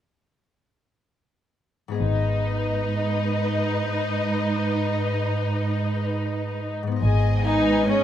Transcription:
0, 0, Header, 1, 7, 480
1, 0, Start_track
1, 0, Key_signature, 5, "minor"
1, 0, Tempo, 837989
1, 1139, Time_signature, 6, 3, 24, 8
1, 1620, Tempo, 815217
1, 3060, Tempo, 863309
1, 4596, End_track
2, 0, Start_track
2, 0, Title_t, "Violin section"
2, 0, Program_c, 0, 48
2, 1140, Note_on_c, 0, 75, 39
2, 3889, Note_off_c, 0, 75, 0
2, 4026, Note_on_c, 0, 80, 38
2, 4250, Note_off_c, 0, 80, 0
2, 4268, Note_on_c, 0, 75, 37
2, 4504, Note_on_c, 0, 80, 34
2, 4505, Note_off_c, 0, 75, 0
2, 4596, Note_off_c, 0, 80, 0
2, 4596, End_track
3, 0, Start_track
3, 0, Title_t, "Violin section"
3, 0, Program_c, 1, 48
3, 1145, Note_on_c, 1, 71, 36
3, 3892, Note_off_c, 1, 71, 0
3, 4031, Note_on_c, 1, 68, 36
3, 4033, Note_on_c, 1, 75, 39
3, 4252, Note_off_c, 1, 68, 0
3, 4253, Note_off_c, 1, 75, 0
3, 4267, Note_on_c, 1, 71, 33
3, 4268, Note_on_c, 1, 80, 34
3, 4504, Note_off_c, 1, 71, 0
3, 4505, Note_off_c, 1, 80, 0
3, 4507, Note_on_c, 1, 68, 36
3, 4508, Note_on_c, 1, 75, 34
3, 4596, Note_off_c, 1, 68, 0
3, 4596, Note_off_c, 1, 75, 0
3, 4596, End_track
4, 0, Start_track
4, 0, Title_t, "Viola section"
4, 0, Program_c, 2, 48
4, 1139, Note_on_c, 2, 63, 38
4, 3889, Note_off_c, 2, 63, 0
4, 4266, Note_on_c, 2, 63, 53
4, 4487, Note_off_c, 2, 63, 0
4, 4505, Note_on_c, 2, 61, 50
4, 4596, Note_off_c, 2, 61, 0
4, 4596, End_track
5, 0, Start_track
5, 0, Title_t, "Harp"
5, 0, Program_c, 3, 46
5, 1077, Note_on_c, 3, 44, 31
5, 1087, Note_on_c, 3, 59, 25
5, 1097, Note_on_c, 3, 68, 27
5, 1112, Note_on_c, 3, 75, 26
5, 3342, Note_off_c, 3, 44, 0
5, 3352, Note_off_c, 3, 59, 0
5, 3361, Note_off_c, 3, 68, 0
5, 3376, Note_off_c, 3, 75, 0
5, 3924, Note_on_c, 3, 44, 36
5, 3948, Note_on_c, 3, 59, 30
5, 3974, Note_on_c, 3, 63, 31
5, 3998, Note_on_c, 3, 75, 31
5, 4596, Note_off_c, 3, 44, 0
5, 4596, Note_off_c, 3, 59, 0
5, 4596, Note_off_c, 3, 63, 0
5, 4596, Note_off_c, 3, 75, 0
5, 4596, End_track
6, 0, Start_track
6, 0, Title_t, "Cello section"
6, 0, Program_c, 4, 48
6, 1137, Note_on_c, 4, 44, 38
6, 3888, Note_off_c, 4, 44, 0
6, 4025, Note_on_c, 4, 44, 45
6, 4596, Note_off_c, 4, 44, 0
6, 4596, End_track
7, 0, Start_track
7, 0, Title_t, "Double bass section"
7, 0, Program_c, 5, 48
7, 1140, Note_on_c, 5, 32, 39
7, 1599, Note_off_c, 5, 32, 0
7, 4030, Note_on_c, 5, 32, 48
7, 4483, Note_off_c, 5, 32, 0
7, 4596, End_track
0, 0, End_of_file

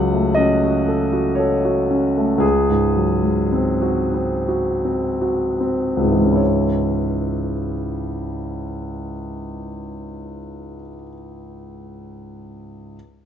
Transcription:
0, 0, Header, 1, 2, 480
1, 0, Start_track
1, 0, Key_signature, 4, "minor"
1, 0, Tempo, 1023891
1, 1136, Time_signature, 3, 2, 24, 8
1, 1137, Tempo, 1092896
1, 1617, Tempo, 1310044
1, 2097, Tempo, 1562500
1, 2577, Tempo, 1435407
1, 3537, Tempo, 1459854
1, 4850, End_track
2, 0, Start_track
2, 0, Title_t, "Grand piano"
2, 0, Program_c, 0, 0
2, 0, Control_c, 0, 64, 127
2, 0, Note_on_c, 0, 37, 56
2, 0, Note_on_c, 0, 49, 38
2, 0, Note_on_c, 0, 54, 37
2, 0, Note_on_c, 0, 78, 85
2, 64, Note_on_c, 0, 57, 41
2, 128, Note_off_c, 0, 54, 0
2, 162, Note_on_c, 0, 75, 68
2, 167, Note_off_c, 0, 78, 0
2, 175, Note_on_c, 0, 61, 41
2, 248, Note_off_c, 0, 57, 0
2, 300, Note_on_c, 0, 66, 43
2, 363, Note_off_c, 0, 61, 0
2, 413, Note_on_c, 0, 69, 38
2, 485, Note_off_c, 0, 66, 0
2, 529, Note_on_c, 0, 66, 40
2, 603, Note_off_c, 0, 69, 0
2, 634, Note_on_c, 0, 73, 50
2, 643, Note_off_c, 0, 75, 0
2, 653, Note_on_c, 0, 69, 37
2, 722, Note_off_c, 0, 66, 0
2, 772, Note_on_c, 0, 66, 43
2, 846, Note_off_c, 0, 69, 0
2, 894, Note_on_c, 0, 61, 41
2, 967, Note_off_c, 0, 66, 0
2, 1020, Note_on_c, 0, 57, 39
2, 1088, Note_off_c, 0, 61, 0
2, 1107, Note_off_c, 0, 37, 0
2, 1114, Note_on_c, 0, 37, 50
2, 1125, Note_on_c, 0, 68, 67
2, 1128, Note_off_c, 0, 73, 0
2, 1139, Note_off_c, 0, 57, 0
2, 1145, Control_c, 0, 64, 0
2, 1149, Note_off_c, 0, 49, 0
2, 1248, Control_c, 0, 64, 127
2, 1257, Note_on_c, 0, 44, 37
2, 1373, Note_on_c, 0, 54, 34
2, 1443, Note_off_c, 0, 44, 0
2, 1489, Note_on_c, 0, 56, 41
2, 1567, Note_off_c, 0, 54, 0
2, 1619, Note_on_c, 0, 60, 41
2, 1682, Note_off_c, 0, 56, 0
2, 1727, Note_on_c, 0, 66, 47
2, 1798, Note_off_c, 0, 60, 0
2, 1839, Note_off_c, 0, 68, 0
2, 1845, Note_on_c, 0, 60, 41
2, 1916, Note_off_c, 0, 66, 0
2, 1970, Note_on_c, 0, 66, 39
2, 2044, Note_off_c, 0, 60, 0
2, 2103, Note_on_c, 0, 60, 38
2, 2167, Note_off_c, 0, 66, 0
2, 2216, Note_on_c, 0, 66, 38
2, 2290, Note_off_c, 0, 60, 0
2, 2336, Note_on_c, 0, 60, 35
2, 2415, Note_off_c, 0, 66, 0
2, 2442, Note_off_c, 0, 37, 0
2, 2447, Note_on_c, 0, 37, 42
2, 2461, Note_on_c, 0, 56, 30
2, 2469, Note_on_c, 0, 44, 33
2, 2492, Note_on_c, 0, 52, 32
2, 2507, Note_off_c, 0, 56, 0
2, 2512, Note_on_c, 0, 56, 32
2, 2530, Note_off_c, 0, 60, 0
2, 2532, Note_on_c, 0, 61, 33
2, 2554, Note_on_c, 0, 64, 34
2, 2566, Note_on_c, 0, 73, 37
2, 2585, Control_c, 0, 64, 0
2, 2670, Control_c, 0, 64, 127
2, 4022, Note_off_c, 0, 37, 0
2, 4046, Note_off_c, 0, 44, 0
2, 4070, Note_off_c, 0, 52, 0
2, 4092, Note_off_c, 0, 56, 0
2, 4113, Note_off_c, 0, 61, 0
2, 4137, Note_off_c, 0, 64, 0
2, 4150, Note_off_c, 0, 73, 0
2, 4751, Control_c, 0, 64, 0
2, 4850, End_track
0, 0, End_of_file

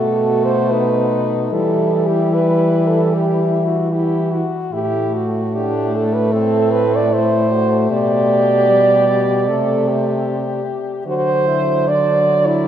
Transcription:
0, 0, Header, 1, 5, 480
1, 0, Start_track
1, 0, Tempo, 804290
1, 908, Time_signature, 4, 2, 24, 8
1, 3307, Tempo, 791557
1, 7634, End_track
2, 0, Start_track
2, 0, Title_t, "French horn"
2, 0, Program_c, 0, 60
2, 0, Note_on_c, 0, 69, 90
2, 263, Note_on_c, 0, 72, 95
2, 272, Note_off_c, 0, 69, 0
2, 423, Note_on_c, 0, 71, 95
2, 432, Note_off_c, 0, 72, 0
2, 803, Note_off_c, 0, 71, 0
2, 904, Note_on_c, 0, 69, 94
2, 1233, Note_on_c, 0, 67, 90
2, 1242, Note_off_c, 0, 69, 0
2, 1397, Note_on_c, 0, 71, 104
2, 1406, Note_off_c, 0, 67, 0
2, 1717, Note_on_c, 0, 69, 89
2, 1726, Note_off_c, 0, 71, 0
2, 1874, Note_on_c, 0, 67, 93
2, 1883, Note_off_c, 0, 69, 0
2, 2181, Note_on_c, 0, 66, 85
2, 2190, Note_off_c, 0, 67, 0
2, 2341, Note_on_c, 0, 64, 93
2, 2350, Note_off_c, 0, 66, 0
2, 2658, Note_off_c, 0, 64, 0
2, 2824, Note_on_c, 0, 67, 95
2, 3070, Note_on_c, 0, 66, 86
2, 3079, Note_off_c, 0, 67, 0
2, 3315, Note_on_c, 0, 67, 94
2, 3324, Note_off_c, 0, 66, 0
2, 3556, Note_on_c, 0, 69, 85
2, 3565, Note_off_c, 0, 67, 0
2, 3676, Note_on_c, 0, 71, 89
2, 3685, Note_off_c, 0, 69, 0
2, 3782, Note_on_c, 0, 69, 93
2, 3791, Note_off_c, 0, 71, 0
2, 4022, Note_on_c, 0, 71, 95
2, 4031, Note_off_c, 0, 69, 0
2, 4164, Note_on_c, 0, 74, 94
2, 4173, Note_off_c, 0, 71, 0
2, 4276, Note_on_c, 0, 72, 106
2, 4285, Note_off_c, 0, 74, 0
2, 4744, Note_off_c, 0, 72, 0
2, 4748, Note_on_c, 0, 74, 104
2, 6398, Note_off_c, 0, 74, 0
2, 6666, Note_on_c, 0, 72, 106
2, 7154, Note_on_c, 0, 74, 107
2, 7164, Note_off_c, 0, 72, 0
2, 7508, Note_on_c, 0, 64, 112
2, 7517, Note_off_c, 0, 74, 0
2, 7634, Note_off_c, 0, 64, 0
2, 7634, End_track
3, 0, Start_track
3, 0, Title_t, "French horn"
3, 0, Program_c, 1, 60
3, 0, Note_on_c, 1, 66, 87
3, 430, Note_on_c, 1, 63, 83
3, 439, Note_off_c, 1, 66, 0
3, 912, Note_on_c, 1, 64, 86
3, 921, Note_off_c, 1, 63, 0
3, 2334, Note_off_c, 1, 64, 0
3, 2338, Note_on_c, 1, 67, 75
3, 2577, Note_on_c, 1, 66, 75
3, 2586, Note_off_c, 1, 67, 0
3, 2823, Note_on_c, 1, 64, 78
3, 2832, Note_off_c, 1, 66, 0
3, 3143, Note_off_c, 1, 64, 0
3, 3305, Note_on_c, 1, 62, 80
3, 3759, Note_off_c, 1, 62, 0
3, 3781, Note_on_c, 1, 60, 77
3, 4262, Note_on_c, 1, 64, 74
3, 4271, Note_off_c, 1, 60, 0
3, 4495, Note_off_c, 1, 64, 0
3, 4499, Note_on_c, 1, 66, 76
3, 4733, Note_on_c, 1, 67, 97
3, 4742, Note_off_c, 1, 66, 0
3, 5697, Note_on_c, 1, 69, 84
3, 5706, Note_off_c, 1, 67, 0
3, 5937, Note_on_c, 1, 67, 78
3, 5946, Note_off_c, 1, 69, 0
3, 6651, Note_off_c, 1, 67, 0
3, 6655, Note_on_c, 1, 66, 83
3, 6904, Note_on_c, 1, 64, 74
3, 6913, Note_off_c, 1, 66, 0
3, 7151, Note_on_c, 1, 62, 81
3, 7160, Note_off_c, 1, 64, 0
3, 7465, Note_off_c, 1, 62, 0
3, 7634, End_track
4, 0, Start_track
4, 0, Title_t, "French horn"
4, 0, Program_c, 2, 60
4, 0, Note_on_c, 2, 57, 78
4, 909, Note_on_c, 2, 55, 75
4, 918, Note_off_c, 2, 57, 0
4, 2661, Note_off_c, 2, 55, 0
4, 2821, Note_on_c, 2, 57, 74
4, 5220, Note_on_c, 2, 55, 70
4, 5229, Note_off_c, 2, 57, 0
4, 5698, Note_on_c, 2, 57, 68
4, 5707, Note_off_c, 2, 55, 0
4, 6497, Note_off_c, 2, 57, 0
4, 6659, Note_on_c, 2, 54, 78
4, 7634, Note_off_c, 2, 54, 0
4, 7634, End_track
5, 0, Start_track
5, 0, Title_t, "French horn"
5, 0, Program_c, 3, 60
5, 0, Note_on_c, 3, 47, 77
5, 887, Note_off_c, 3, 47, 0
5, 907, Note_on_c, 3, 52, 72
5, 2637, Note_off_c, 3, 52, 0
5, 2818, Note_on_c, 3, 45, 73
5, 4715, Note_off_c, 3, 45, 0
5, 4745, Note_on_c, 3, 47, 72
5, 5696, Note_on_c, 3, 48, 77
5, 5705, Note_off_c, 3, 47, 0
5, 6496, Note_off_c, 3, 48, 0
5, 6659, Note_on_c, 3, 50, 75
5, 7634, Note_off_c, 3, 50, 0
5, 7634, End_track
0, 0, End_of_file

